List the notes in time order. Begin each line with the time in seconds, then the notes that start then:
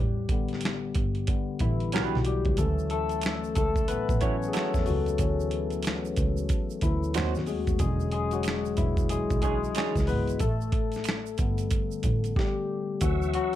Already playing: G3 G4
0.00 A1
0.29 D3 G3 B3, kick, closed hi-hat
0.49 closed hi-hat
0.53 snare
0.61 closed hi-hat
0.65 finger snap, snare
0.95 G1, kick, closed hi-hat
1.15 closed hi-hat
1.27 D3 G3 B3, kick, closed hi-hat
1.59 A1 E3 E4, kick, closed hi-hat
1.80 closed hi-hat
1.92 B1 F#3 D4 F#4 G4 B4, snare, closed hi-hat
1.97 finger snap
2.15 B1, snare
2.25 G3 G4, closed hi-hat
2.45 C#2, kick, closed hi-hat
2.57 D2 E3 F#3 A3 C#4 A4, kick, closed hi-hat, shaker
2.79 shaker
2.90 A3 A4, closed hi-hat
3.09 closed hi-hat, shaker
3.21 finger snap, closed hi-hat, shaker
3.26 finger snap, snare
3.44 shaker
3.55 C#2 A3 A4, kick, closed hi-hat, shaker
3.76 kick, shaker
3.88 A1 B3 B4, closed hi-hat, shaker
4.09 A1, kick, shaker
4.21 E3 F#3 C#4 E4 F#4 C#5, kick, closed hi-hat, shaker
4.43 shaker
4.48 G#4
4.53 A3 E4 F#4 A4 C#5, finger snap, snare, closed hi-hat, shaker
4.58 finger snap
4.74 E2, kick, snare, shaker
4.86 C#2 F#3 F#4, open hi-hat, shaker
5.06 closed hi-hat, shaker
5.18 D2 E3 F#3 C#4, kick, closed hi-hat, shaker
5.40 shaker
5.51 closed hi-hat
5.70 closed hi-hat, shaker
5.83 finger snap, closed hi-hat, shaker
5.87 finger snap, snare
6.05 shaker
6.16 C#2, kick, closed hi-hat, shaker
6.37 shaker
6.49 kick, closed hi-hat, shaker
6.70 shaker
6.81 D2 E3 E4, kick, closed hi-hat, shaker
7.03 shaker
7.14 D#2 F#3 A3 C4 D#4 F#4 C5, finger snap, snare, closed hi-hat, shaker
7.19 finger snap
7.35 D#2, snare, shaker
7.46 G#3 G#4, open hi-hat, shaker
7.67 D#2, kick, closed hi-hat, shaker
7.79 E1 D3 F#3 G#3 C#4 G#4, kick, closed hi-hat, shaker
8.00 shaker
8.12 G#3 G#4, closed hi-hat
8.31 F#3 F#4, closed hi-hat, shaker
8.43 finger snap, closed hi-hat, shaker
8.48 finger snap, snare
8.65 shaker
8.77 E1 E3 E4, kick, closed hi-hat, shaker
8.97 kick, shaker
9.09 B1 G#3 G#4, closed hi-hat, shaker
9.30 B1, kick, shaker
9.42 G#3 D4 G#4 C#5, kick, closed hi-hat, shaker
9.64 shaker
9.75 D4 G#4 C#5, finger snap, snare, closed hi-hat, shaker
9.79 finger snap
9.96 C#2, kick, snare, shaker
10.07 G#1 B3 B4, open hi-hat, shaker
10.28 closed hi-hat, shaker
10.39 A1 A3 A4, kick, closed hi-hat, shaker
10.61 shaker
10.72 kick, closed hi-hat
10.92 closed hi-hat, shaker
10.96 snare
11.04 finger snap, closed hi-hat, shaker
11.09 finger snap, snare
11.26 shaker
11.38 G1 D3 G3 B3, kick, closed hi-hat, shaker
11.58 closed hi-hat, shaker
11.71 kick, closed hi-hat, shaker
11.91 shaker
12.03 A1, kick, closed hi-hat, shaker
12.24 closed hi-hat, shaker
12.36 G3 G4, kick, snare
13.01 D2 E3 F#3 C#4 F#4 E5 F#5 C#6 E6, kick, closed hi-hat, shaker
13.22 shaker
13.34 F#3 F#4, closed hi-hat